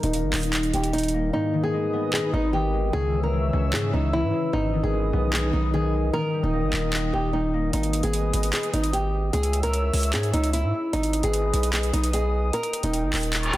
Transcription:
Already playing: harp D#3 G3 B3 D#4
0.03 808-style bass D#1, nylon-string guitar D#4, closed hi-hat
0.13 harp A#3, closed hi-hat
0.23 808-style bass G1
0.33 808-style bass D#1, harp D#4, clap, open hi-hat
0.43 closed hi-hat
0.53 harp D#5, clap, closed hi-hat
0.63 closed hi-hat
0.73 808-style bass D#1, nylon-string guitar G4, closed hi-hat
0.84 closed hi-hat
0.93 harp G3, nylon-string guitar D#4, closed hi-hat
0.98 closed hi-hat
1.03 closed hi-hat
1.08 closed hi-hat
1.14 harp A#3
1.33 harp G#2, nylon-string guitar D#4, analog synth pad B4 D#5 D#6
1.53 harp D#3
1.64 nylon-string guitar G#4
1.73 harp G#3
1.93 harp B3
2.13 harp D#4, nylon-string guitar G#4, clap
2.33 808-style bass G#1, nylon-string guitar D#4
2.53 harp D#3, nylon-string guitar G4
2.73 harp G#3
2.93 808-style bass C#2, harp C#3, nylon-string guitar G#4, analog synth pad C#5 E5 E6
3.13 harp E3
3.23 nylon-string guitar A#4
3.33 harp G#3
3.53 808-style bass C#2, harp C#4
3.73 808-style bass G#2, harp E4, nylon-string guitar G#4, clap
3.93 808-style bass C#2, nylon-string guitar D#4
4.13 harp E3, nylon-string guitar E4
4.23 808-style bass G#2
4.33 harp G#3
4.53 808-style bass G#1, harp G#2, nylon-string guitar D#4, analog synth pad B4 D#5 D#6
4.74 harp D#3
4.83 808-style bass G#1, nylon-string guitar G#4
4.93 harp G#3
5.13 808-style bass B1, harp B3
5.33 harp D#4, nylon-string guitar G#4, clap
5.53 808-style bass B1, nylon-string guitar D#4
5.73 harp D#3, nylon-string guitar G#4
5.93 harp G#3
6.13 harp D#3, analog synth pad A#4 G5 D#6, nylon-string guitar A#4
6.34 harp G3
6.43 808-style bass D#1, nylon-string guitar D#4
6.53 harp A#3
6.63 808-style bass G1
6.73 808-style bass D#1, harp D#4, clap
6.93 harp D#5, clap
7.13 808-style bass D#1, nylon-string guitar G4
7.33 harp G3, nylon-string guitar D#4
7.54 harp A#3
7.73 808-style bass G#1, nylon-string guitar D#4, analog synth pad B4 D#5 D#6, closed hi-hat
7.83 closed hi-hat
7.93 closed hi-hat
8.03 808-style bass G#1, nylon-string guitar G#4, closed hi-hat
8.13 closed hi-hat
8.33 808-style bass G#1, closed hi-hat
8.43 closed hi-hat
8.53 nylon-string guitar G#4, clap, closed hi-hat
8.63 closed hi-hat
8.73 808-style bass G#1, nylon-string guitar D#4, closed hi-hat
8.84 closed hi-hat
8.93 nylon-string guitar G4, closed hi-hat
9.33 808-style bass C#2, nylon-string guitar G#4, analog synth pad C#5 E5 E6, closed hi-hat
9.43 closed hi-hat
9.53 closed hi-hat
9.63 nylon-string guitar A#4, closed hi-hat
9.73 closed hi-hat
9.93 808-style bass C#2, open hi-hat
10.03 closed hi-hat
10.13 808-style bass G#2, nylon-string guitar G#4, clap, closed hi-hat
10.23 closed hi-hat
10.33 808-style bass C#2, nylon-string guitar D#4, closed hi-hat
10.44 closed hi-hat
10.53 nylon-string guitar E4, closed hi-hat
10.63 808-style bass G#2
10.93 808-style bass G#1, nylon-string guitar D#4, analog synth pad B4 D#5 D#6, closed hi-hat
11.03 closed hi-hat
11.13 closed hi-hat
11.23 808-style bass G#1, nylon-string guitar G#4, closed hi-hat
11.34 closed hi-hat
11.53 808-style bass B1, closed hi-hat
11.63 closed hi-hat
11.73 nylon-string guitar G#4, clap, closed hi-hat
11.83 closed hi-hat
11.93 808-style bass B1, nylon-string guitar D#4, closed hi-hat
12.04 closed hi-hat
12.13 nylon-string guitar G#4, closed hi-hat
12.53 analog synth pad A#4 G5, nylon-string guitar A#4, closed hi-hat
12.63 closed hi-hat
12.73 closed hi-hat
12.83 808-style bass D#1, nylon-string guitar D#4, closed hi-hat
12.94 closed hi-hat
13.03 808-style bass G1
13.13 808-style bass D#1, clap, open hi-hat
13.23 closed hi-hat
13.33 clap, closed hi-hat, reverse cymbal
13.43 closed hi-hat
13.53 808-style bass D#1, nylon-string guitar G4, closed hi-hat

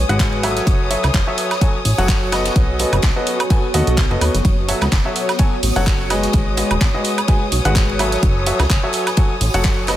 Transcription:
Already playing: ambient pad B4 G#5 D#6, string section C#5 D#6
0.09 analog synth bass G#1, upright piano G#3 F#4 G#4 B4 F#5, closed hi-hat
0.20 kick, snare, clap, closed hi-hat, ride
0.32 ride
0.43 upright piano F#3 F#4 A4 C#5 E5, open hi-hat, ride, high woodblock
0.57 snare, closed hi-hat
0.67 analog synth bass F#1, ambient pad F#4, kick, closed hi-hat, ride
0.90 upright piano F#3 F#4 A4 C#5 E5, open hi-hat, ride
1.04 analog synth bass C#2, snare, clap, closed hi-hat, high woodblock
1.14 analog synth bass F#1, ambient pad C#5, kick, snare, clap, closed hi-hat, ride
1.27 upright piano F#3 F#4 A4 C#5 E5
1.38 open hi-hat, ride
1.51 snare, closed hi-hat, high woodblock
1.61 upright piano F#3 F#4 A4 C#5 G#5, kick, closed hi-hat, ride
1.85 analog synth bass A1, open hi-hat
1.98 analog synth bass F#1, upright piano F#3 F#4 A4 C#5 F#5, closed hi-hat
2.09 kick, snare, clap, closed hi-hat, ride
2.32 upright piano B3 F#4 A4 B4 D#5, snare, open hi-hat, ride, high woodblock
2.45 snare, closed hi-hat, ride
2.56 analog synth bass B1, ambient pad B3, kick, closed hi-hat, ride
2.79 upright piano B3 F#4 A4 B4 D#5, open hi-hat, ride
2.93 analog synth bass F#1, closed hi-hat, high woodblock
3.02 analog synth bass B1, kick, snare, clap, closed hi-hat, ride
3.16 upright piano B3 F#4 A4 B4 D#5
3.27 open hi-hat, ride
3.40 closed hi-hat, high woodblock
3.50 upright piano B3 F#4 A4 B4 G#5, kick, closed hi-hat, ride
3.74 analog synth bass D#2, upright piano B3 F#4 A4 B4 D#5, open hi-hat, ride
3.87 analog synth bass B1, closed hi-hat
3.97 kick, snare, clap, closed hi-hat, ride
4.11 analog synth bass F#1, upright piano B3 F#4 A4 B4 D#5, ride
4.21 analog synth bass D#2, open hi-hat, ride, high woodblock
4.34 analog synth bass F#1, snare, closed hi-hat
4.45 analog synth bass F#1, string section C#5 D#6, kick, closed hi-hat, ride
4.68 upright piano F#3 F#4 A4 C#5 E5, open hi-hat, ride
4.81 analog synth bass C#2, snare, clap, closed hi-hat, high woodblock
4.92 analog synth bass F#1, kick, snare, clap, closed hi-hat, ride
5.05 upright piano F#3 F#4 A4 C#5 E5
5.16 open hi-hat, ride
5.29 ambient pad G#5, snare, closed hi-hat, high woodblock
5.39 upright piano F#3 F#4 A4 C#5 G#5, kick, closed hi-hat, ride
5.63 analog synth bass A1, open hi-hat
5.76 analog synth bass F#1, upright piano F#3 F#4 A4 C#5 F#5, closed hi-hat
5.86 kick, snare, clap, closed hi-hat, ride
6.10 upright piano G#3 F#4 G#4 B4 D#5, snare, open hi-hat, ride, high woodblock
6.23 snare, closed hi-hat
6.33 analog synth bass G#1, ambient pad B4, kick, closed hi-hat, ride
6.57 upright piano G#3 F#4 G#4 B4 D#5, open hi-hat, ride
6.71 analog synth bass D#1, closed hi-hat, high woodblock
6.78 analog synth bass G#1, ambient pad D#6, kick, snare, clap, closed hi-hat, ride
6.94 upright piano G#3 F#4 G#4 B4 D#5
7.04 open hi-hat, ride
7.18 closed hi-hat, high woodblock
7.28 upright piano G#3 F#4 G#4 B4 G#5, kick, closed hi-hat, ride
7.52 analog synth bass B1, open hi-hat, ride
7.65 analog synth bass G#1, upright piano G#3 F#4 G#4 B4 F#5, closed hi-hat
7.76 kick, snare, clap, closed hi-hat, ride
7.89 ride
7.99 upright piano F#3 F#4 A4 C#5 E5, open hi-hat, ride, high woodblock
8.12 snare, closed hi-hat
8.23 analog synth bass F#1, ambient pad F#4, kick, closed hi-hat, ride
8.46 upright piano F#3 F#4 A4 C#5 E5, open hi-hat, ride
8.60 analog synth bass C#2, ambient pad C#5, snare, clap, closed hi-hat, high woodblock
8.70 analog synth bass F#1, kick, snare, clap, closed hi-hat, ride
8.83 upright piano F#3 F#4 A4 C#5 E5
8.93 open hi-hat, ride
9.06 snare, closed hi-hat, high woodblock
9.17 upright piano F#3 F#4 A4 C#5 G#5, kick, closed hi-hat, ride
9.41 analog synth bass A1, open hi-hat
9.54 analog synth bass F#1, upright piano F#3 F#4 A4 C#5 F#5, closed hi-hat
9.64 kick, snare, clap, closed hi-hat, ride
9.87 upright piano B3 F#4 A4 B4 D#5, snare, open hi-hat, ride, high woodblock

